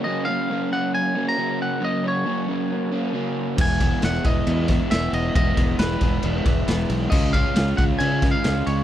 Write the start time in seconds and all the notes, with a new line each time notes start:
0.04 F#2 C#3 F#3 A#3 C#4 D#5
0.25 A#3 C#4 F5
0.29 F#3
0.50 F#2 C#3 F#3 A#3 C#4
0.71 F#3 A#3 C#4 F#5
0.95 G#5
1.15 F#3 A#3 C#4
1.29 A#5
1.37 C#3 F#3 A#3 C#4
1.62 F#5
1.80 F#2 C#3 F#3 A#3 C#4
1.84 D#5
2.03 F#3 A#3 C#4
2.08 C#5
2.25 F#2 C#3 F#3 A#3 C#4
2.48 F#3 A#3 C#4
2.92 F#3 A#3 C#4
3.13 C#3 F#3 A#3 C#4
3.57 E1 E3 G#3 B3 E4 G#5, kick, crash
3.80 G#3 B3 E4, kick, ride
4.02 E1 E3 G#3 B3 E4 F#5, snare, ride
4.24 E1 G#3 B3 E4 D#5, kick, ride
4.47 E2, ride
4.68 B3 E4, kick, snare, ride
4.72 G#3
4.91 E1 E3 G#3 B3 E4 E5, snare, ride
5.13 E1 D#5, ride
5.35 E1 E3 G#3 B3 E4 D#5, kick, ride
5.57 E1 G#3 B3 E4, kick, ride
5.79 E1 E3 G#3 B3 E4 B4, snare, ride
6.01 E1 G#3 B3 E4, kick, ride
6.22 E1, ride
6.45 E1 G#3 B3 E4, kick, ride
6.67 E1 E3 G#3 B3 E4, snare, ride
6.90 B1, ride
7.10 C#2 C#3 G#3 C#4 F4 D#5, kick, crash
7.33 G#3 C#4 F4 F5, kick, ride
7.55 C#2 C#3 G#3 C#4 F4, snare, ride
7.77 C#2 G#3 C#4 F4 F#5, kick, ride
7.99 C#3 G#5, ride
8.22 G#3 C#4 F4, kick, snare, ride
8.31 F5
8.43 C#2 C#3 G#3 C#4 F4, snare, ride
8.67 C#2 C#5, ride